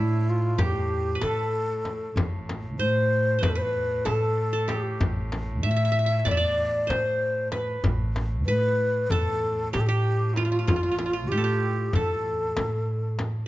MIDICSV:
0, 0, Header, 1, 6, 480
1, 0, Start_track
1, 0, Tempo, 630915
1, 1645, Time_signature, 9, 3, 24, 8
1, 10253, End_track
2, 0, Start_track
2, 0, Title_t, "Ney"
2, 0, Program_c, 0, 77
2, 0, Note_on_c, 0, 64, 69
2, 229, Note_on_c, 0, 65, 74
2, 241, Note_off_c, 0, 64, 0
2, 457, Note_off_c, 0, 65, 0
2, 474, Note_on_c, 0, 67, 79
2, 933, Note_on_c, 0, 69, 73
2, 944, Note_off_c, 0, 67, 0
2, 1649, Note_off_c, 0, 69, 0
2, 2124, Note_on_c, 0, 72, 86
2, 2598, Note_on_c, 0, 71, 73
2, 2609, Note_off_c, 0, 72, 0
2, 2663, Note_on_c, 0, 69, 65
2, 2675, Note_off_c, 0, 71, 0
2, 2720, Note_on_c, 0, 72, 78
2, 2731, Note_off_c, 0, 69, 0
2, 2753, Note_on_c, 0, 71, 85
2, 2761, Note_off_c, 0, 72, 0
2, 3087, Note_on_c, 0, 69, 76
2, 3098, Note_off_c, 0, 71, 0
2, 3587, Note_on_c, 0, 67, 60
2, 3598, Note_off_c, 0, 69, 0
2, 3816, Note_off_c, 0, 67, 0
2, 4290, Note_on_c, 0, 76, 91
2, 4713, Note_off_c, 0, 76, 0
2, 4713, Note_on_c, 0, 76, 63
2, 4777, Note_on_c, 0, 74, 90
2, 4788, Note_off_c, 0, 76, 0
2, 5249, Note_on_c, 0, 72, 77
2, 5261, Note_off_c, 0, 74, 0
2, 5727, Note_off_c, 0, 72, 0
2, 5732, Note_on_c, 0, 71, 57
2, 5952, Note_off_c, 0, 71, 0
2, 6437, Note_on_c, 0, 71, 98
2, 6899, Note_off_c, 0, 71, 0
2, 6899, Note_on_c, 0, 71, 75
2, 6925, Note_on_c, 0, 69, 81
2, 6933, Note_off_c, 0, 71, 0
2, 7391, Note_off_c, 0, 69, 0
2, 7404, Note_on_c, 0, 67, 84
2, 7459, Note_on_c, 0, 69, 69
2, 7471, Note_off_c, 0, 67, 0
2, 7508, Note_on_c, 0, 67, 83
2, 7520, Note_off_c, 0, 69, 0
2, 7836, Note_off_c, 0, 67, 0
2, 7836, Note_on_c, 0, 67, 53
2, 7864, Note_on_c, 0, 64, 78
2, 7876, Note_off_c, 0, 67, 0
2, 7986, Note_off_c, 0, 64, 0
2, 7986, Note_on_c, 0, 65, 78
2, 8582, Note_on_c, 0, 67, 80
2, 8594, Note_off_c, 0, 65, 0
2, 9084, Note_on_c, 0, 69, 78
2, 9096, Note_off_c, 0, 67, 0
2, 10042, Note_off_c, 0, 69, 0
2, 10253, End_track
3, 0, Start_track
3, 0, Title_t, "Qanun"
3, 0, Program_c, 1, 107
3, 0, Note_on_c, 1, 62, 57
3, 0, Note_on_c, 1, 64, 67
3, 444, Note_on_c, 1, 67, 64
3, 730, Note_off_c, 1, 62, 0
3, 876, Note_on_c, 1, 71, 50
3, 908, Note_off_c, 1, 64, 0
3, 923, Note_on_c, 1, 69, 54
3, 1400, Note_off_c, 1, 67, 0
3, 1707, Note_off_c, 1, 71, 0
3, 1814, Note_off_c, 1, 69, 0
3, 2126, Note_on_c, 1, 72, 71
3, 2574, Note_off_c, 1, 72, 0
3, 2577, Note_on_c, 1, 72, 50
3, 2609, Note_on_c, 1, 71, 62
3, 2655, Note_off_c, 1, 72, 0
3, 2701, Note_off_c, 1, 71, 0
3, 2704, Note_on_c, 1, 71, 64
3, 3083, Note_on_c, 1, 69, 64
3, 3442, Note_off_c, 1, 69, 0
3, 3446, Note_on_c, 1, 69, 60
3, 3534, Note_off_c, 1, 71, 0
3, 3559, Note_on_c, 1, 67, 53
3, 4285, Note_on_c, 1, 76, 75
3, 4337, Note_off_c, 1, 69, 0
3, 4340, Note_off_c, 1, 76, 0
3, 4343, Note_on_c, 1, 76, 55
3, 4383, Note_off_c, 1, 76, 0
3, 4386, Note_on_c, 1, 76, 66
3, 4446, Note_off_c, 1, 76, 0
3, 4449, Note_on_c, 1, 76, 53
3, 4500, Note_off_c, 1, 76, 0
3, 4503, Note_on_c, 1, 76, 65
3, 4516, Note_off_c, 1, 67, 0
3, 4554, Note_off_c, 1, 76, 0
3, 4557, Note_on_c, 1, 76, 51
3, 4609, Note_off_c, 1, 76, 0
3, 4612, Note_on_c, 1, 76, 60
3, 4755, Note_on_c, 1, 74, 68
3, 4799, Note_off_c, 1, 76, 0
3, 4802, Note_on_c, 1, 76, 59
3, 4844, Note_off_c, 1, 74, 0
3, 4847, Note_on_c, 1, 74, 72
3, 5227, Note_on_c, 1, 72, 58
3, 5501, Note_off_c, 1, 76, 0
3, 5597, Note_off_c, 1, 74, 0
3, 5721, Note_on_c, 1, 71, 54
3, 5767, Note_off_c, 1, 72, 0
3, 6448, Note_off_c, 1, 71, 0
3, 6451, Note_on_c, 1, 71, 75
3, 6938, Note_on_c, 1, 69, 72
3, 7281, Note_off_c, 1, 71, 0
3, 7404, Note_on_c, 1, 67, 57
3, 7518, Note_off_c, 1, 67, 0
3, 7521, Note_on_c, 1, 67, 70
3, 7829, Note_off_c, 1, 69, 0
3, 7892, Note_on_c, 1, 65, 70
3, 7946, Note_off_c, 1, 65, 0
3, 7949, Note_on_c, 1, 65, 45
3, 7999, Note_off_c, 1, 65, 0
3, 8002, Note_on_c, 1, 65, 50
3, 8053, Note_off_c, 1, 65, 0
3, 8056, Note_on_c, 1, 65, 42
3, 8118, Note_off_c, 1, 65, 0
3, 8121, Note_on_c, 1, 65, 51
3, 8183, Note_off_c, 1, 65, 0
3, 8186, Note_on_c, 1, 65, 41
3, 8237, Note_off_c, 1, 65, 0
3, 8241, Note_on_c, 1, 65, 47
3, 8301, Note_off_c, 1, 65, 0
3, 8304, Note_on_c, 1, 65, 44
3, 8355, Note_off_c, 1, 65, 0
3, 8358, Note_on_c, 1, 65, 47
3, 8410, Note_off_c, 1, 65, 0
3, 8413, Note_on_c, 1, 65, 41
3, 8467, Note_off_c, 1, 65, 0
3, 8470, Note_on_c, 1, 65, 54
3, 8478, Note_off_c, 1, 67, 0
3, 8609, Note_on_c, 1, 67, 66
3, 8654, Note_on_c, 1, 69, 54
3, 8700, Note_off_c, 1, 67, 0
3, 8703, Note_on_c, 1, 67, 62
3, 9092, Note_off_c, 1, 69, 0
3, 9095, Note_on_c, 1, 69, 61
3, 9497, Note_off_c, 1, 65, 0
3, 9659, Note_off_c, 1, 67, 0
3, 10017, Note_off_c, 1, 69, 0
3, 10253, End_track
4, 0, Start_track
4, 0, Title_t, "Cello"
4, 0, Program_c, 2, 42
4, 0, Note_on_c, 2, 45, 68
4, 1641, Note_off_c, 2, 45, 0
4, 1645, Note_on_c, 2, 45, 62
4, 5967, Note_off_c, 2, 45, 0
4, 5972, Note_on_c, 2, 45, 59
4, 10253, Note_off_c, 2, 45, 0
4, 10253, End_track
5, 0, Start_track
5, 0, Title_t, "Upright bass"
5, 0, Program_c, 3, 32
5, 0, Note_on_c, 3, 45, 81
5, 394, Note_off_c, 3, 45, 0
5, 445, Note_on_c, 3, 40, 68
5, 872, Note_off_c, 3, 40, 0
5, 927, Note_on_c, 3, 45, 72
5, 1567, Note_off_c, 3, 45, 0
5, 1641, Note_on_c, 3, 33, 70
5, 2121, Note_off_c, 3, 33, 0
5, 2121, Note_on_c, 3, 45, 83
5, 2550, Note_off_c, 3, 45, 0
5, 2604, Note_on_c, 3, 40, 65
5, 3031, Note_off_c, 3, 40, 0
5, 3089, Note_on_c, 3, 45, 73
5, 3727, Note_off_c, 3, 45, 0
5, 3806, Note_on_c, 3, 33, 72
5, 4288, Note_off_c, 3, 33, 0
5, 4288, Note_on_c, 3, 45, 84
5, 4714, Note_off_c, 3, 45, 0
5, 4767, Note_on_c, 3, 40, 70
5, 5193, Note_off_c, 3, 40, 0
5, 5243, Note_on_c, 3, 45, 71
5, 5884, Note_off_c, 3, 45, 0
5, 5962, Note_on_c, 3, 33, 84
5, 6446, Note_off_c, 3, 33, 0
5, 6446, Note_on_c, 3, 45, 91
5, 6872, Note_off_c, 3, 45, 0
5, 6922, Note_on_c, 3, 40, 72
5, 7350, Note_off_c, 3, 40, 0
5, 7414, Note_on_c, 3, 45, 79
5, 8050, Note_off_c, 3, 45, 0
5, 8130, Note_on_c, 3, 33, 82
5, 8611, Note_off_c, 3, 33, 0
5, 8611, Note_on_c, 3, 45, 81
5, 9034, Note_off_c, 3, 45, 0
5, 9089, Note_on_c, 3, 40, 74
5, 9513, Note_off_c, 3, 40, 0
5, 9565, Note_on_c, 3, 45, 65
5, 10203, Note_off_c, 3, 45, 0
5, 10253, End_track
6, 0, Start_track
6, 0, Title_t, "Frame drum"
6, 446, Note_on_c, 9, 64, 79
6, 522, Note_off_c, 9, 64, 0
6, 925, Note_on_c, 9, 64, 66
6, 1001, Note_off_c, 9, 64, 0
6, 1409, Note_on_c, 9, 64, 46
6, 1485, Note_off_c, 9, 64, 0
6, 1652, Note_on_c, 9, 64, 80
6, 1728, Note_off_c, 9, 64, 0
6, 1897, Note_on_c, 9, 64, 58
6, 1973, Note_off_c, 9, 64, 0
6, 2609, Note_on_c, 9, 64, 81
6, 2685, Note_off_c, 9, 64, 0
6, 3088, Note_on_c, 9, 64, 62
6, 3164, Note_off_c, 9, 64, 0
6, 3567, Note_on_c, 9, 64, 59
6, 3643, Note_off_c, 9, 64, 0
6, 3809, Note_on_c, 9, 64, 75
6, 3885, Note_off_c, 9, 64, 0
6, 4049, Note_on_c, 9, 64, 62
6, 4125, Note_off_c, 9, 64, 0
6, 4765, Note_on_c, 9, 64, 70
6, 4841, Note_off_c, 9, 64, 0
6, 5251, Note_on_c, 9, 64, 68
6, 5327, Note_off_c, 9, 64, 0
6, 5720, Note_on_c, 9, 64, 59
6, 5796, Note_off_c, 9, 64, 0
6, 5963, Note_on_c, 9, 64, 77
6, 6039, Note_off_c, 9, 64, 0
6, 6207, Note_on_c, 9, 64, 60
6, 6284, Note_off_c, 9, 64, 0
6, 6927, Note_on_c, 9, 64, 69
6, 7003, Note_off_c, 9, 64, 0
6, 7408, Note_on_c, 9, 64, 64
6, 7484, Note_off_c, 9, 64, 0
6, 7884, Note_on_c, 9, 64, 47
6, 7960, Note_off_c, 9, 64, 0
6, 8126, Note_on_c, 9, 64, 81
6, 8202, Note_off_c, 9, 64, 0
6, 8358, Note_on_c, 9, 64, 60
6, 8434, Note_off_c, 9, 64, 0
6, 9078, Note_on_c, 9, 64, 68
6, 9154, Note_off_c, 9, 64, 0
6, 9560, Note_on_c, 9, 64, 72
6, 9636, Note_off_c, 9, 64, 0
6, 10033, Note_on_c, 9, 64, 63
6, 10109, Note_off_c, 9, 64, 0
6, 10253, End_track
0, 0, End_of_file